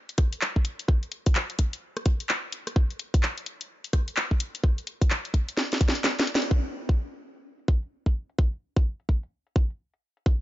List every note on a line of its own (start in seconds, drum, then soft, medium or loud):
0.09 closed hi-hat medium
0.18 kick loud
0.18 cross-stick medium
0.18 closed hi-hat loud
0.33 closed hi-hat medium
0.41 clap loud
0.56 kick medium
0.65 closed hi-hat loud
0.79 closed hi-hat medium
0.88 kick loud
0.88 cross-stick soft
1.03 closed hi-hat soft
1.12 closed hi-hat loud
1.26 kick loud
1.26 closed hi-hat medium
1.35 clap loud
1.50 closed hi-hat medium
1.59 kick medium
1.59 closed hi-hat loud
1.73 closed hi-hat medium
1.97 cross-stick medium
1.97 closed hi-hat medium
2.06 kick loud
2.06 closed hi-hat loud
2.20 closed hi-hat medium
2.29 clap loud
2.52 closed hi-hat loud
2.67 cross-stick soft
2.67 closed hi-hat medium
2.76 kick loud
2.76 cross-stick soft
2.91 closed hi-hat soft
2.99 closed hi-hat loud
3.14 kick medium
3.14 closed hi-hat medium
3.23 clap loud
3.38 closed hi-hat medium
3.46 closed hi-hat loud
3.61 closed hi-hat medium
3.84 closed hi-hat medium
3.93 kick loud
3.93 cross-stick medium
3.93 closed hi-hat loud
4.08 closed hi-hat medium
4.17 clap loud
4.31 kick medium
4.40 closed hi-hat loud
4.55 closed hi-hat medium
4.64 kick loud
4.64 cross-stick soft
4.78 closed hi-hat soft
4.87 closed hi-hat loud
5.02 kick loud
5.02 closed hi-hat medium
5.10 clap loud
5.25 closed hi-hat medium
5.34 kick medium
5.34 closed hi-hat loud
5.49 closed hi-hat medium
5.57 snare medium
5.72 snare medium
5.72 closed hi-hat medium
5.81 kick loud
5.81 closed hi-hat loud
5.89 snare medium
5.95 closed hi-hat medium
6.04 snare medium
6.04 clap loud
6.19 snare loud
6.19 closed hi-hat soft
6.27 closed hi-hat loud
6.35 snare loud
6.42 closed hi-hat medium
6.51 kick loud
6.89 kick medium
7.12 closed hi-hat soft
7.36 closed hi-hat medium
7.59 closed hi-hat soft
7.68 kick loud
7.83 closed hi-hat medium
8.06 kick medium
8.30 closed hi-hat medium
8.39 kick loud
8.53 closed hi-hat soft
8.77 kick loud
9.00 closed hi-hat soft
9.09 kick medium
9.23 closed hi-hat medium
9.47 closed hi-hat soft
9.56 kick loud
9.70 closed hi-hat medium
9.94 closed hi-hat soft
10.17 closed hi-hat medium
10.26 kick loud